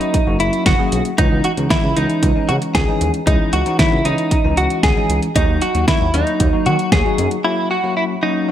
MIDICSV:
0, 0, Header, 1, 5, 480
1, 0, Start_track
1, 0, Tempo, 521739
1, 1087, Time_signature, 4, 2, 24, 8
1, 7835, End_track
2, 0, Start_track
2, 0, Title_t, "Clean electric guitar"
2, 0, Program_c, 0, 27
2, 0, Note_on_c, 0, 63, 90
2, 335, Note_off_c, 0, 63, 0
2, 368, Note_on_c, 0, 64, 86
2, 605, Note_off_c, 0, 64, 0
2, 609, Note_on_c, 0, 66, 93
2, 943, Note_off_c, 0, 66, 0
2, 1089, Note_on_c, 0, 63, 88
2, 1329, Note_on_c, 0, 66, 88
2, 1336, Note_off_c, 0, 63, 0
2, 1393, Note_off_c, 0, 66, 0
2, 1569, Note_on_c, 0, 64, 85
2, 1809, Note_on_c, 0, 63, 89
2, 1816, Note_off_c, 0, 64, 0
2, 2287, Note_on_c, 0, 66, 89
2, 2303, Note_off_c, 0, 63, 0
2, 2352, Note_off_c, 0, 66, 0
2, 2527, Note_on_c, 0, 68, 92
2, 2862, Note_off_c, 0, 68, 0
2, 3008, Note_on_c, 0, 63, 88
2, 3248, Note_on_c, 0, 66, 85
2, 3255, Note_off_c, 0, 63, 0
2, 3484, Note_off_c, 0, 66, 0
2, 3487, Note_on_c, 0, 64, 84
2, 3729, Note_on_c, 0, 63, 87
2, 3735, Note_off_c, 0, 64, 0
2, 4209, Note_on_c, 0, 66, 89
2, 4223, Note_off_c, 0, 63, 0
2, 4445, Note_off_c, 0, 66, 0
2, 4449, Note_on_c, 0, 68, 94
2, 4783, Note_off_c, 0, 68, 0
2, 4929, Note_on_c, 0, 63, 88
2, 5169, Note_on_c, 0, 66, 88
2, 5175, Note_off_c, 0, 63, 0
2, 5392, Note_off_c, 0, 66, 0
2, 5409, Note_on_c, 0, 64, 83
2, 5649, Note_on_c, 0, 63, 88
2, 5656, Note_off_c, 0, 64, 0
2, 6130, Note_on_c, 0, 66, 85
2, 6143, Note_off_c, 0, 63, 0
2, 6352, Note_off_c, 0, 66, 0
2, 6370, Note_on_c, 0, 68, 91
2, 6704, Note_off_c, 0, 68, 0
2, 6850, Note_on_c, 0, 64, 91
2, 7072, Note_off_c, 0, 64, 0
2, 7090, Note_on_c, 0, 66, 87
2, 7326, Note_off_c, 0, 66, 0
2, 7330, Note_on_c, 0, 64, 82
2, 7395, Note_off_c, 0, 64, 0
2, 7569, Note_on_c, 0, 63, 76
2, 7835, Note_off_c, 0, 63, 0
2, 7835, End_track
3, 0, Start_track
3, 0, Title_t, "Tine electric piano"
3, 0, Program_c, 1, 4
3, 0, Note_on_c, 1, 54, 69
3, 0, Note_on_c, 1, 58, 68
3, 0, Note_on_c, 1, 61, 65
3, 0, Note_on_c, 1, 66, 77
3, 164, Note_off_c, 1, 54, 0
3, 164, Note_off_c, 1, 58, 0
3, 164, Note_off_c, 1, 61, 0
3, 164, Note_off_c, 1, 66, 0
3, 248, Note_on_c, 1, 54, 71
3, 248, Note_on_c, 1, 58, 63
3, 248, Note_on_c, 1, 61, 62
3, 248, Note_on_c, 1, 66, 78
3, 615, Note_off_c, 1, 54, 0
3, 615, Note_off_c, 1, 58, 0
3, 615, Note_off_c, 1, 61, 0
3, 615, Note_off_c, 1, 66, 0
3, 728, Note_on_c, 1, 54, 73
3, 728, Note_on_c, 1, 58, 68
3, 728, Note_on_c, 1, 61, 65
3, 728, Note_on_c, 1, 68, 80
3, 1004, Note_off_c, 1, 54, 0
3, 1004, Note_off_c, 1, 58, 0
3, 1004, Note_off_c, 1, 61, 0
3, 1004, Note_off_c, 1, 68, 0
3, 1088, Note_on_c, 1, 52, 71
3, 1088, Note_on_c, 1, 56, 66
3, 1088, Note_on_c, 1, 61, 66
3, 1088, Note_on_c, 1, 63, 82
3, 1363, Note_off_c, 1, 52, 0
3, 1364, Note_off_c, 1, 56, 0
3, 1364, Note_off_c, 1, 61, 0
3, 1364, Note_off_c, 1, 63, 0
3, 1448, Note_on_c, 1, 52, 71
3, 1448, Note_on_c, 1, 56, 64
3, 1448, Note_on_c, 1, 61, 66
3, 1448, Note_on_c, 1, 63, 78
3, 1723, Note_off_c, 1, 56, 0
3, 1724, Note_off_c, 1, 52, 0
3, 1724, Note_off_c, 1, 61, 0
3, 1724, Note_off_c, 1, 63, 0
3, 1808, Note_on_c, 1, 52, 70
3, 1808, Note_on_c, 1, 56, 67
3, 1808, Note_on_c, 1, 61, 66
3, 1808, Note_on_c, 1, 63, 79
3, 2083, Note_off_c, 1, 52, 0
3, 2083, Note_off_c, 1, 56, 0
3, 2083, Note_off_c, 1, 61, 0
3, 2083, Note_off_c, 1, 63, 0
3, 2167, Note_on_c, 1, 52, 69
3, 2167, Note_on_c, 1, 56, 63
3, 2167, Note_on_c, 1, 63, 78
3, 2168, Note_on_c, 1, 61, 65
3, 2535, Note_off_c, 1, 52, 0
3, 2535, Note_off_c, 1, 56, 0
3, 2535, Note_off_c, 1, 61, 0
3, 2535, Note_off_c, 1, 63, 0
3, 2647, Note_on_c, 1, 52, 73
3, 2647, Note_on_c, 1, 56, 65
3, 2647, Note_on_c, 1, 61, 69
3, 2648, Note_on_c, 1, 63, 81
3, 2923, Note_off_c, 1, 52, 0
3, 2923, Note_off_c, 1, 56, 0
3, 2923, Note_off_c, 1, 61, 0
3, 2923, Note_off_c, 1, 63, 0
3, 3007, Note_on_c, 1, 56, 69
3, 3007, Note_on_c, 1, 61, 64
3, 3007, Note_on_c, 1, 64, 79
3, 3008, Note_on_c, 1, 52, 73
3, 3283, Note_off_c, 1, 52, 0
3, 3283, Note_off_c, 1, 56, 0
3, 3283, Note_off_c, 1, 61, 0
3, 3283, Note_off_c, 1, 64, 0
3, 3367, Note_on_c, 1, 52, 70
3, 3367, Note_on_c, 1, 56, 65
3, 3367, Note_on_c, 1, 61, 66
3, 3367, Note_on_c, 1, 63, 80
3, 3643, Note_off_c, 1, 52, 0
3, 3643, Note_off_c, 1, 56, 0
3, 3643, Note_off_c, 1, 61, 0
3, 3643, Note_off_c, 1, 63, 0
3, 3727, Note_on_c, 1, 52, 72
3, 3727, Note_on_c, 1, 56, 68
3, 3727, Note_on_c, 1, 61, 66
3, 3727, Note_on_c, 1, 63, 78
3, 4003, Note_off_c, 1, 52, 0
3, 4003, Note_off_c, 1, 56, 0
3, 4003, Note_off_c, 1, 61, 0
3, 4003, Note_off_c, 1, 63, 0
3, 4088, Note_on_c, 1, 52, 71
3, 4088, Note_on_c, 1, 56, 65
3, 4088, Note_on_c, 1, 61, 65
3, 4088, Note_on_c, 1, 63, 78
3, 4455, Note_off_c, 1, 52, 0
3, 4455, Note_off_c, 1, 56, 0
3, 4455, Note_off_c, 1, 61, 0
3, 4455, Note_off_c, 1, 63, 0
3, 4568, Note_on_c, 1, 52, 74
3, 4568, Note_on_c, 1, 56, 67
3, 4568, Note_on_c, 1, 61, 66
3, 4568, Note_on_c, 1, 63, 81
3, 4843, Note_off_c, 1, 52, 0
3, 4843, Note_off_c, 1, 61, 0
3, 4843, Note_off_c, 1, 63, 0
3, 4844, Note_off_c, 1, 56, 0
3, 4928, Note_on_c, 1, 54, 74
3, 4928, Note_on_c, 1, 58, 66
3, 4928, Note_on_c, 1, 63, 67
3, 4928, Note_on_c, 1, 66, 80
3, 5203, Note_off_c, 1, 54, 0
3, 5203, Note_off_c, 1, 63, 0
3, 5203, Note_off_c, 1, 66, 0
3, 5204, Note_off_c, 1, 58, 0
3, 5288, Note_on_c, 1, 54, 71
3, 5288, Note_on_c, 1, 58, 67
3, 5288, Note_on_c, 1, 66, 77
3, 5289, Note_on_c, 1, 63, 68
3, 5564, Note_off_c, 1, 54, 0
3, 5564, Note_off_c, 1, 58, 0
3, 5564, Note_off_c, 1, 63, 0
3, 5564, Note_off_c, 1, 66, 0
3, 5649, Note_on_c, 1, 54, 70
3, 5649, Note_on_c, 1, 58, 65
3, 5649, Note_on_c, 1, 63, 67
3, 5649, Note_on_c, 1, 66, 78
3, 5924, Note_off_c, 1, 54, 0
3, 5924, Note_off_c, 1, 58, 0
3, 5924, Note_off_c, 1, 63, 0
3, 5924, Note_off_c, 1, 66, 0
3, 6008, Note_on_c, 1, 54, 70
3, 6008, Note_on_c, 1, 58, 64
3, 6008, Note_on_c, 1, 63, 63
3, 6008, Note_on_c, 1, 66, 78
3, 6375, Note_off_c, 1, 54, 0
3, 6375, Note_off_c, 1, 58, 0
3, 6375, Note_off_c, 1, 63, 0
3, 6375, Note_off_c, 1, 66, 0
3, 6488, Note_on_c, 1, 54, 74
3, 6488, Note_on_c, 1, 58, 68
3, 6488, Note_on_c, 1, 63, 67
3, 6488, Note_on_c, 1, 66, 82
3, 6763, Note_off_c, 1, 54, 0
3, 6763, Note_off_c, 1, 58, 0
3, 6763, Note_off_c, 1, 66, 0
3, 6764, Note_off_c, 1, 63, 0
3, 6848, Note_on_c, 1, 54, 74
3, 6848, Note_on_c, 1, 58, 66
3, 6848, Note_on_c, 1, 61, 69
3, 6848, Note_on_c, 1, 66, 82
3, 7123, Note_off_c, 1, 54, 0
3, 7123, Note_off_c, 1, 58, 0
3, 7123, Note_off_c, 1, 61, 0
3, 7123, Note_off_c, 1, 66, 0
3, 7207, Note_on_c, 1, 58, 67
3, 7208, Note_on_c, 1, 54, 72
3, 7208, Note_on_c, 1, 61, 65
3, 7208, Note_on_c, 1, 66, 77
3, 7483, Note_off_c, 1, 54, 0
3, 7483, Note_off_c, 1, 58, 0
3, 7483, Note_off_c, 1, 61, 0
3, 7483, Note_off_c, 1, 66, 0
3, 7567, Note_on_c, 1, 54, 72
3, 7567, Note_on_c, 1, 58, 66
3, 7567, Note_on_c, 1, 61, 68
3, 7567, Note_on_c, 1, 66, 79
3, 7796, Note_off_c, 1, 54, 0
3, 7796, Note_off_c, 1, 66, 0
3, 7808, Note_off_c, 1, 58, 0
3, 7808, Note_off_c, 1, 61, 0
3, 7835, End_track
4, 0, Start_track
4, 0, Title_t, "Analog synth bass"
4, 0, Program_c, 2, 38
4, 248, Note_on_c, 2, 30, 102
4, 337, Note_off_c, 2, 30, 0
4, 368, Note_on_c, 2, 30, 98
4, 456, Note_off_c, 2, 30, 0
4, 607, Note_on_c, 2, 30, 96
4, 696, Note_off_c, 2, 30, 0
4, 848, Note_on_c, 2, 35, 94
4, 936, Note_off_c, 2, 35, 0
4, 1088, Note_on_c, 2, 37, 101
4, 1176, Note_off_c, 2, 37, 0
4, 1208, Note_on_c, 2, 37, 98
4, 1297, Note_off_c, 2, 37, 0
4, 1448, Note_on_c, 2, 37, 93
4, 1537, Note_off_c, 2, 37, 0
4, 1689, Note_on_c, 2, 37, 93
4, 1777, Note_off_c, 2, 37, 0
4, 1809, Note_on_c, 2, 37, 94
4, 1897, Note_off_c, 2, 37, 0
4, 2049, Note_on_c, 2, 37, 108
4, 2137, Note_off_c, 2, 37, 0
4, 2289, Note_on_c, 2, 49, 93
4, 2377, Note_off_c, 2, 49, 0
4, 2527, Note_on_c, 2, 37, 87
4, 2616, Note_off_c, 2, 37, 0
4, 2768, Note_on_c, 2, 39, 96
4, 2857, Note_off_c, 2, 39, 0
4, 3008, Note_on_c, 2, 37, 107
4, 3096, Note_off_c, 2, 37, 0
4, 3248, Note_on_c, 2, 37, 94
4, 3337, Note_off_c, 2, 37, 0
4, 3608, Note_on_c, 2, 37, 94
4, 3697, Note_off_c, 2, 37, 0
4, 3728, Note_on_c, 2, 37, 95
4, 3816, Note_off_c, 2, 37, 0
4, 4088, Note_on_c, 2, 37, 95
4, 4177, Note_off_c, 2, 37, 0
4, 4208, Note_on_c, 2, 37, 95
4, 4297, Note_off_c, 2, 37, 0
4, 4447, Note_on_c, 2, 37, 98
4, 4536, Note_off_c, 2, 37, 0
4, 4688, Note_on_c, 2, 37, 96
4, 4777, Note_off_c, 2, 37, 0
4, 4927, Note_on_c, 2, 39, 99
4, 5016, Note_off_c, 2, 39, 0
4, 5048, Note_on_c, 2, 39, 93
4, 5137, Note_off_c, 2, 39, 0
4, 5288, Note_on_c, 2, 39, 89
4, 5376, Note_off_c, 2, 39, 0
4, 5528, Note_on_c, 2, 39, 88
4, 5616, Note_off_c, 2, 39, 0
4, 5648, Note_on_c, 2, 39, 98
4, 5736, Note_off_c, 2, 39, 0
4, 5888, Note_on_c, 2, 39, 107
4, 5977, Note_off_c, 2, 39, 0
4, 6127, Note_on_c, 2, 51, 99
4, 6216, Note_off_c, 2, 51, 0
4, 6367, Note_on_c, 2, 39, 96
4, 6456, Note_off_c, 2, 39, 0
4, 6607, Note_on_c, 2, 42, 92
4, 6696, Note_off_c, 2, 42, 0
4, 7835, End_track
5, 0, Start_track
5, 0, Title_t, "Drums"
5, 7, Note_on_c, 9, 42, 44
5, 99, Note_off_c, 9, 42, 0
5, 128, Note_on_c, 9, 42, 77
5, 129, Note_on_c, 9, 36, 97
5, 220, Note_off_c, 9, 42, 0
5, 221, Note_off_c, 9, 36, 0
5, 367, Note_on_c, 9, 42, 66
5, 459, Note_off_c, 9, 42, 0
5, 488, Note_on_c, 9, 42, 49
5, 580, Note_off_c, 9, 42, 0
5, 606, Note_on_c, 9, 38, 106
5, 607, Note_on_c, 9, 36, 114
5, 607, Note_on_c, 9, 42, 73
5, 698, Note_off_c, 9, 38, 0
5, 699, Note_off_c, 9, 36, 0
5, 699, Note_off_c, 9, 42, 0
5, 848, Note_on_c, 9, 42, 81
5, 940, Note_off_c, 9, 42, 0
5, 967, Note_on_c, 9, 42, 49
5, 1059, Note_off_c, 9, 42, 0
5, 1088, Note_on_c, 9, 36, 119
5, 1088, Note_on_c, 9, 42, 85
5, 1180, Note_off_c, 9, 36, 0
5, 1180, Note_off_c, 9, 42, 0
5, 1325, Note_on_c, 9, 42, 67
5, 1417, Note_off_c, 9, 42, 0
5, 1448, Note_on_c, 9, 42, 53
5, 1540, Note_off_c, 9, 42, 0
5, 1567, Note_on_c, 9, 36, 108
5, 1571, Note_on_c, 9, 38, 117
5, 1571, Note_on_c, 9, 42, 68
5, 1659, Note_off_c, 9, 36, 0
5, 1663, Note_off_c, 9, 38, 0
5, 1663, Note_off_c, 9, 42, 0
5, 1808, Note_on_c, 9, 42, 69
5, 1900, Note_off_c, 9, 42, 0
5, 1928, Note_on_c, 9, 42, 44
5, 2020, Note_off_c, 9, 42, 0
5, 2049, Note_on_c, 9, 36, 101
5, 2049, Note_on_c, 9, 42, 78
5, 2141, Note_off_c, 9, 36, 0
5, 2141, Note_off_c, 9, 42, 0
5, 2288, Note_on_c, 9, 42, 63
5, 2380, Note_off_c, 9, 42, 0
5, 2408, Note_on_c, 9, 42, 50
5, 2500, Note_off_c, 9, 42, 0
5, 2527, Note_on_c, 9, 36, 111
5, 2527, Note_on_c, 9, 38, 101
5, 2529, Note_on_c, 9, 42, 78
5, 2619, Note_off_c, 9, 36, 0
5, 2619, Note_off_c, 9, 38, 0
5, 2621, Note_off_c, 9, 42, 0
5, 2769, Note_on_c, 9, 42, 81
5, 2861, Note_off_c, 9, 42, 0
5, 2888, Note_on_c, 9, 42, 48
5, 2980, Note_off_c, 9, 42, 0
5, 3007, Note_on_c, 9, 36, 121
5, 3008, Note_on_c, 9, 42, 85
5, 3099, Note_off_c, 9, 36, 0
5, 3100, Note_off_c, 9, 42, 0
5, 3245, Note_on_c, 9, 42, 69
5, 3337, Note_off_c, 9, 42, 0
5, 3367, Note_on_c, 9, 42, 51
5, 3459, Note_off_c, 9, 42, 0
5, 3487, Note_on_c, 9, 36, 110
5, 3489, Note_on_c, 9, 38, 112
5, 3490, Note_on_c, 9, 42, 71
5, 3579, Note_off_c, 9, 36, 0
5, 3581, Note_off_c, 9, 38, 0
5, 3582, Note_off_c, 9, 42, 0
5, 3727, Note_on_c, 9, 42, 69
5, 3819, Note_off_c, 9, 42, 0
5, 3847, Note_on_c, 9, 42, 46
5, 3939, Note_off_c, 9, 42, 0
5, 3968, Note_on_c, 9, 36, 99
5, 3968, Note_on_c, 9, 42, 78
5, 4060, Note_off_c, 9, 36, 0
5, 4060, Note_off_c, 9, 42, 0
5, 4207, Note_on_c, 9, 42, 65
5, 4299, Note_off_c, 9, 42, 0
5, 4327, Note_on_c, 9, 42, 49
5, 4419, Note_off_c, 9, 42, 0
5, 4446, Note_on_c, 9, 38, 100
5, 4447, Note_on_c, 9, 36, 109
5, 4448, Note_on_c, 9, 42, 74
5, 4538, Note_off_c, 9, 38, 0
5, 4539, Note_off_c, 9, 36, 0
5, 4540, Note_off_c, 9, 42, 0
5, 4688, Note_on_c, 9, 42, 77
5, 4780, Note_off_c, 9, 42, 0
5, 4807, Note_on_c, 9, 42, 49
5, 4899, Note_off_c, 9, 42, 0
5, 4927, Note_on_c, 9, 36, 118
5, 4928, Note_on_c, 9, 42, 88
5, 5019, Note_off_c, 9, 36, 0
5, 5020, Note_off_c, 9, 42, 0
5, 5166, Note_on_c, 9, 42, 69
5, 5258, Note_off_c, 9, 42, 0
5, 5288, Note_on_c, 9, 42, 51
5, 5380, Note_off_c, 9, 42, 0
5, 5407, Note_on_c, 9, 36, 113
5, 5410, Note_on_c, 9, 38, 118
5, 5410, Note_on_c, 9, 42, 71
5, 5499, Note_off_c, 9, 36, 0
5, 5502, Note_off_c, 9, 38, 0
5, 5502, Note_off_c, 9, 42, 0
5, 5647, Note_on_c, 9, 42, 71
5, 5739, Note_off_c, 9, 42, 0
5, 5767, Note_on_c, 9, 42, 46
5, 5859, Note_off_c, 9, 42, 0
5, 5888, Note_on_c, 9, 36, 98
5, 5888, Note_on_c, 9, 42, 79
5, 5980, Note_off_c, 9, 36, 0
5, 5980, Note_off_c, 9, 42, 0
5, 6126, Note_on_c, 9, 42, 63
5, 6218, Note_off_c, 9, 42, 0
5, 6247, Note_on_c, 9, 42, 49
5, 6339, Note_off_c, 9, 42, 0
5, 6366, Note_on_c, 9, 38, 102
5, 6367, Note_on_c, 9, 36, 108
5, 6368, Note_on_c, 9, 42, 76
5, 6458, Note_off_c, 9, 38, 0
5, 6459, Note_off_c, 9, 36, 0
5, 6460, Note_off_c, 9, 42, 0
5, 6609, Note_on_c, 9, 42, 83
5, 6701, Note_off_c, 9, 42, 0
5, 6727, Note_on_c, 9, 42, 50
5, 6819, Note_off_c, 9, 42, 0
5, 7835, End_track
0, 0, End_of_file